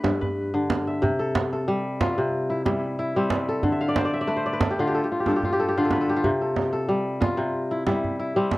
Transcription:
Already playing: A3 G4 B4
0.04 G2, djembe slap, djembe tone
0.21 B4, djembe bass
0.37 djembe slap
0.54 D3
0.70 djembe slap, djembe tone
0.87 E5
1.02 C3, djembe slap, djembe bass
1.19 A4
1.35 djembe slap, djembe tone
1.53 A4
1.68 G3
2.01 F4, djembe slap, djembe bass
2.18 C3
2.50 E4
2.65 G3 E4, djembe slap, djembe tone
2.99 E4
3.16 G3 C4
3.30 djembe slap, djembe tone
3.49 A4
3.63 D3, djembe slap, djembe bass
3.72 E5
3.81 F5
3.89 D5
3.96 C5, djembe slap, djembe tone
4.05 D5
4.14 E5
4.21 D5
4.28 A3 B4
4.37 C5
4.46 D5
4.53 B4
4.61 A4, djembe slap, djembe tone, djembe bass
4.71 G4
4.79 D3 F4
4.88 G4
4.95 A4
5.04 G4
5.12 F4
5.20 G4
5.26 G2 A4, djembe slap, djembe tone
5.36 G4
5.43 F4, djembe bass
5.53 G4
5.60 A4
5.69 G4
5.77 D3 F4
5.85 A4
5.90 B4, djembe slap, djembe tone
6.01 A4
6.09 G4
6.16 F4
6.24 C3, djembe slap, djembe bass
6.41 A4
6.56 djembe slap, djembe tone
6.73 A4
6.89 G3
7.21 F4, djembe slap, djembe tone, djembe bass
7.37 C3
7.71 E4
7.86 G3 E4, djembe slap, djembe tone
8.04 djembe bass
8.19 E4
8.36 G3 C4
8.51 djembe slap, djembe tone

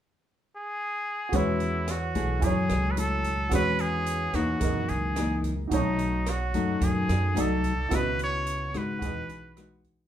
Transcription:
0.56 G#4
1.29 E2 E3 G#3 F#4 G#4, kick, closed hi-hat
1.33 C#4 E4 F#4 B4 C#5
1.60 closed hi-hat
1.88 F#4, cross-stick, closed hi-hat
2.15 B1 A3 E4 G#4, kick, closed hi-hat
2.40 F#2 F#3 E4 G#5, kick, closed hi-hat
2.44 G#4 C#5
2.69 C#2, cross-stick, closed hi-hat
2.91 B4
2.97 A3 E4 A4, closed hi-hat
3.24 kick, closed hi-hat
3.49 E2 E3 G#3 C#4 F#4 G#4 B4, kick, cross-stick, closed hi-hat
3.54 F#4 B4 C#5
3.79 G#4, closed hi-hat
4.06 closed hi-hat
4.33 E2 E3 A#3 D#4 F#4, kick, cross-stick, closed hi-hat
4.60 F#2 G#4 A#4, kick, closed hi-hat
4.64 D#5
4.88 C#2 G#4, closed hi-hat
5.16 E3 A#3 D#4, cross-stick, closed hi-hat
5.44 kick, closed hi-hat
5.68 B1 B2 D#4 F#4, kick, closed hi-hat
5.72 F#3 A3 D#4 C#5
5.99 closed hi-hat
6.26 F#4, cross-stick, closed hi-hat
6.54 F#2 F#3 A3 D#4, kick, closed hi-hat
6.81 F#2 G#4, kick, closed hi-hat
7.09 F#2, cross-stick, closed hi-hat
7.34 C2 F#3 A3 D#4 F#4 A4 D5, closed hi-hat
7.40 A4
7.64 kick, closed hi-hat
7.89 C#2 C#3 B3 E4 F#4 B4, kick, cross-stick, closed hi-hat
7.94 B4 D#5
8.19 closed hi-hat
8.24 C#5
8.47 closed hi-hat
8.74 G#1 G#3 D#4 F#4 B4, kick, cross-stick, closed hi-hat
8.99 E2 E3 F#4 G#4, kick, closed hi-hat
9.03 B4 D#5
9.29 B1, closed hi-hat
9.57 G#3 D#4 F#4, cross-stick, closed hi-hat
9.84 kick, closed hi-hat

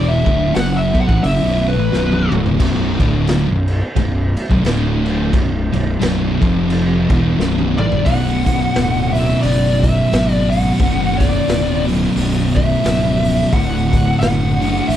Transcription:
Already playing: E1 E2 B2 E3
0.08 E5
0.25 D1 D2 A2 D3, kick
0.54 F#1 F#2 C#3 F#3 F#5, snare, open hi-hat
0.77 E5
0.94 B1 B2 F#3, kick
1.01 F#5
1.08 A1 A2 E3, kick
1.23 F#1 F#2 C#3 E5, open hi-hat
1.42 B0 B1 F#2 B2
1.68 B4
1.77 A1 A2 E3
1.91 B0 B1 F#2 B2, snare
2.12 high tom
2.31 D1 D2 A2 D3, mid tom
2.46 floor tom
2.59 B0 B1 F#2 B2, kick, crash
2.99 D1 D2 A2 D3, kick, crash
3.27 snare, crash
3.48 B0 B1 F#2
3.68 crash
3.96 B0 B1 F#2, kick, crash
4.37 crash
4.49 B0 B1 F#2, kick
4.64 D1 D2 A2 D3, snare, crash
5.06 crash
5.32 B0 B1 F#2, kick, crash
5.72 B0 B1 F#2, crash
6.00 B0 B1 F#2 B2, snare, crash
6.40 F1 F2 C3 F3, kick, crash
6.70 crash
7.09 E1 E2 B2 E3, kick, crash
7.37 B0 B1 F#2 B2, snare
7.58 high tom
7.77 A1 A2 E3 D5, mid tom
7.92 F#1 F#2 C#3, floor tom
8.05 B0 B1 F#2 F#5, kick, open hi-hat
8.09 B2
8.46 kick, open hi-hat
8.74 D1, snare, open hi-hat
9.13 F#2 B2 E5, open hi-hat
9.18 B1
9.41 F#1 D5, open hi-hat
9.80 E5, kick, open hi-hat
10.10 G#1 B1 F#2 B2, snare, open hi-hat
10.34 D5
10.50 F#5, open hi-hat
10.79 F#1 B1 F#2 B2, kick, open hi-hat
11.18 D5, kick, snare, open hi-hat
11.48 D1, snare, open hi-hat
11.88 B1 F#2 B2, open hi-hat
12.16 B0, open hi-hat
12.56 E5, kick, open hi-hat
12.83 C#1 B1 F#2 B2, snare, open hi-hat
13.24 open hi-hat
13.52 D1 D2 A2 D3 F#5, kick, open hi-hat
13.93 kick, open hi-hat
14.20 F#1 F#5, snare, open hi-hat
14.60 D2 A2 D3, open hi-hat
14.88 A1 E5, open hi-hat

